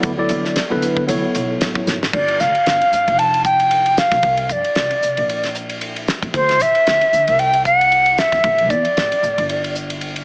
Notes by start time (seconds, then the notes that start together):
Already playing: F#3 B3 E4 A4 D5
0.03 D2, kick, hi-hat pedal, ride
0.17 F#3 B3 E4 A4 D5
0.29 D3, hi-hat pedal, ride
0.45 snare
0.56 snare, hi-hat pedal, ride
0.70 D3 F#3 B3 E4 A4 B4
0.82 hi-hat pedal, ride
0.97 kick
1.07 D2 F#3 B3 E4 A4 C#5, hi-hat pedal, ride
1.35 B1, hi-hat pedal, ride
1.61 A1, snare, hi-hat pedal, ride
1.75 kick
1.87 G#1, snare, hi-hat pedal
2.03 snare
2.13 G1 D5, kick, crash
2.28 ride
2.40 D2 F5, snare, hi-hat pedal
2.55 ride
2.66 G1, snare, ride
2.81 ride
2.93 G2, hi-hat pedal
3.07 F1, ride
3.19 A5, ride
3.34 ride
3.45 G5, kick, hi-hat pedal
3.60 ride
3.71 ride
3.86 ride
3.97 F5, snare, hi-hat pedal
4.11 B1, kick, snare, ride
4.23 C2, kick, ride
4.37 ride
4.49 G2 D5, kick, hi-hat pedal
4.64 ride
4.75 C2, snare, ride
4.91 ride
5.02 C3, hi-hat pedal
5.17 A#1, ride
5.29 ride
5.43 snare, ride
5.54 hi-hat pedal
5.70 ride
5.81 ride
5.96 ride
6.08 snare, hi-hat pedal
6.22 A1, kick, ride
6.34 D2 C5, kick, ride
6.49 snare, ride
6.60 A1 E5, hi-hat pedal
6.75 ride
6.87 D2, snare, ride
7.01 ride
7.13 D3, hi-hat pedal
7.28 C2, ride
7.39 G5, ride
7.53 ride
7.65 F#5, kick, hi-hat pedal
7.81 ride
7.92 ride
8.06 ride
8.18 E5, snare, hi-hat pedal
8.32 E2, kick, snare, ride
8.44 A1, kick, ride
8.58 ride
8.70 E2 D5, kick, hi-hat pedal
8.85 ride
8.97 A1, snare, ride
9.12 ride
9.23 A2, hi-hat pedal
9.38 G1, ride
9.49 ride
9.64 ride
9.75 hi-hat pedal
9.90 ride
10.01 ride
10.16 ride